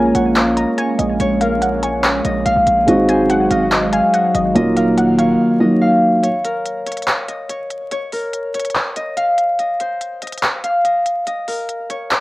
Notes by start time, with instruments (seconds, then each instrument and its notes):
Already playing: 808-style bass A#1, grand piano G#3 A#3 C#4 F4, analog synth pad G#3 A#3 C#4, harp A#4 C#5 D#5 F5, synth pluck G#5
0.15 808-style bass A#1, harp C#5, synth pluck F#5, closed hi-hat
0.36 synth pluck F5, clap, closed hi-hat
0.57 harp D#5, synth pluck A#5, closed hi-hat
0.78 harp C#5, synth pluck G#5, closed hi-hat
0.99 808-style bass A#1, synth pluck D#5, closed hi-hat
1.20 808-style bass A#1, harp C#5, closed hi-hat
1.41 harp A#4, synth pluck F5, closed hi-hat
1.62 synth pluck F#5, closed hi-hat
1.83 harp C#5, synth pluck G#5, closed hi-hat
2.04 clap, closed hi-hat
2.25 808-style bass A#1, harp D#5, closed hi-hat
2.46 808-style bass A#1, harp F5, closed hi-hat
2.56 808-style bass A#1
2.67 808-style bass A#1, closed hi-hat
2.86 808-style bass G#1, analog synth pad F#3 C4, grand piano G#3 C4 D#4 F#4, harp D#5, closed hi-hat
3.09 harp C5, synth pluck G#5, closed hi-hat
3.30 synth pluck F#5, closed hi-hat
3.51 808-style bass G#1, harp D#5, synth pluck F5, closed hi-hat
3.72 synth pluck D#5, clap, closed hi-hat
3.93 harp F5, synth pluck G#5, closed hi-hat
4.13 harp D#5, synth pluck F#5, closed hi-hat
4.34 808-style bass G#1, synth pluck D#5, closed hi-hat
4.54 808-style bass D#1, analog synth pad D#3 A#3 F5, grand piano F#3 A#3 D#4 F4, harp D#5, closed hi-hat
4.77 harp A#4, synth pluck F5, closed hi-hat
4.98 synth pluck F#5, closed hi-hat
5.18 harp C#5, synth pluck F5, closed hi-hat
5.60 grand piano F#3 A#3 D#4 F#4, harp D#5
5.82 harp F5
6.23 harp C#5, closed hi-hat
6.44 harp A#4, closed hi-hat
6.65 closed hi-hat
6.86 harp C#5, closed hi-hat
6.92 closed hi-hat
6.97 closed hi-hat
7.02 closed hi-hat
7.07 clap, closed hi-hat
7.28 harp D#5, closed hi-hat
7.49 harp C#5, closed hi-hat
7.70 closed hi-hat
7.91 harp C#5, closed hi-hat
8.12 harp A#4, open hi-hat
8.33 closed hi-hat
8.54 harp C#5, closed hi-hat
8.59 closed hi-hat
8.65 closed hi-hat
8.70 closed hi-hat
8.75 clap, closed hi-hat
8.96 harp D#5, closed hi-hat
9.17 harp F5, closed hi-hat
9.38 closed hi-hat
9.59 harp D#5, closed hi-hat
9.80 harp C5, closed hi-hat
10.01 closed hi-hat
10.22 harp D#5, closed hi-hat
10.27 closed hi-hat
10.32 closed hi-hat
10.38 closed hi-hat
10.43 clap, closed hi-hat
10.64 harp F5, closed hi-hat
10.84 harp D#5, closed hi-hat
11.06 closed hi-hat
11.27 harp D#5, closed hi-hat
11.48 harp A#4, open hi-hat
11.69 closed hi-hat
11.90 harp C#5, closed hi-hat
12.11 clap, closed hi-hat